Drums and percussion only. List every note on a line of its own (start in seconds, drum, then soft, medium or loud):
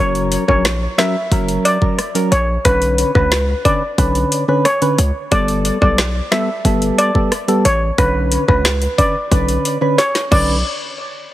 0.15 closed hi-hat medium
0.32 closed hi-hat medium
0.49 kick medium
0.65 cross-stick loud
0.65 snare loud
0.65 closed hi-hat medium
0.99 cross-stick loud
0.99 snare loud
0.99 closed hi-hat medium
1.32 kick loud
1.32 closed hi-hat medium
1.48 closed hi-hat medium
1.65 closed hi-hat medium
1.82 kick medium
1.99 cross-stick medium
1.99 closed hi-hat medium
2.15 closed hi-hat medium
2.32 closed hi-hat medium
2.65 kick loud
2.65 closed hi-hat medium
2.82 closed hi-hat medium
2.98 closed hi-hat medium
3.15 kick medium
3.32 cross-stick loud
3.32 snare loud
3.32 closed hi-hat medium
3.65 kick medium
3.65 closed hi-hat medium
3.98 kick loud
3.98 closed hi-hat medium
4.15 closed hi-hat medium
4.32 closed hi-hat medium
4.65 cross-stick medium
4.65 closed hi-hat medium
4.82 closed hi-hat medium
4.98 closed hi-hat medium
5.32 kick loud
5.32 closed hi-hat medium
5.48 closed hi-hat medium
5.65 closed hi-hat medium
5.82 kick medium
5.98 cross-stick loud
5.98 snare loud
5.98 closed hi-hat medium
6.32 cross-stick loud
6.32 snare loud
6.32 closed hi-hat medium
6.65 kick loud
6.65 closed hi-hat medium
6.82 closed hi-hat soft
6.99 closed hi-hat medium
7.15 kick medium
7.32 cross-stick medium
7.32 closed hi-hat medium
7.48 closed hi-hat medium
7.65 closed hi-hat medium
7.98 kick loud
7.98 closed hi-hat medium
8.32 closed hi-hat medium
8.49 kick medium
8.65 cross-stick medium
8.65 cross-stick loud
8.65 snare loud
8.65 closed hi-hat medium
8.82 closed hi-hat medium
8.98 kick medium
8.98 closed hi-hat medium
9.32 kick loud
9.32 closed hi-hat medium
9.48 closed hi-hat soft
9.65 closed hi-hat medium
9.98 snare medium
9.98 closed hi-hat medium
10.15 snare medium
10.15 closed hi-hat medium
10.32 kick loud
10.32 crash medium